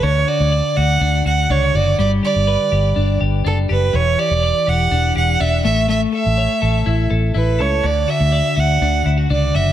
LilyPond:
<<
  \new Staff \with { instrumentName = "Violin" } { \time 4/4 \key d \major \tempo 4 = 123 cis''8 d''4 fis''4 fis''8 cis''8 d''8 | d''8 d''2 r8 a'8 b'8 | cis''8 d''4 fis''4 fis''8 e''8 e''8 | e''8 e''2 r8 b'8 cis''8 |
d''8 e''4 fis''4 r8 d''8 e''8 | }
  \new Staff \with { instrumentName = "Clean electric guitar" } { \time 4/4 \key d \major d8 fis'8 d''8 fis'8 d'8 fis'8 d'8 fis'8 | g8 g'8 b'8 g'8 d'8 g'8 d'8 g'8 | e8 g'8 d''8 g'8 d'8 g'8 d'8 a8 | a8 a'8 cis''8 a'8 e'8 a'8 e'8 a'8 |
d8 fis'8 d''8 fis'8 d'8 e'16 fis'16 d'8 fis'8 | }
  \new Staff \with { instrumentName = "Fingered electric bass" } { \clef bass \time 4/4 \key d \major d,8 r16 d,8 r16 d,8 d,8 d,8 cis,8 fis,,8 | g,,8 r16 g,,8 r16 g,,8 g,,8 g,,8 fis,,8 fis,,8 | e,,8 r16 e,,8 r16 e,,8 e,,8 e,,8 e,,8 a,,8~ | a,,8 r16 a,,8 r16 a,,8 a,,8 a,,8 a,,8 cis,8 |
d,8 r16 d,8 r16 d,8 d,8 d,8 cis,8 fis,,8 | }
>>